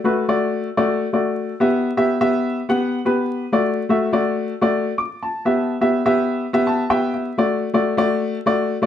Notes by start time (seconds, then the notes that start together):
0.04 A3 F#4 B4
0.28 A3 F#4 D5
0.77 A3 F#4 D5
1.13 A3 F#4 D5
1.60 B3 G4 E5
1.97 B3 G4 E5
2.21 B3 G4 E5
2.69 B3 G4 F#5
3.05 B3 G4 B4
3.52 A3 F#4 D5
3.89 A3 F#4 E5
4.12 A3 F#4 D5
4.61 A3 F#4 D5
4.98 D6
5.23 A5
5.45 B3 G4 E5
5.81 B3 G4 E5
6.05 B3 G4 E5
6.53 B3 G4 E5
6.67 A5
6.90 B3 G4 E5 G5
7.14 E5
7.38 A3 F#4 D5
7.74 A3 F#4 D5
7.97 A3 F#4 D5
8.46 A3 F#4 D5
8.82 A3 F#4 D5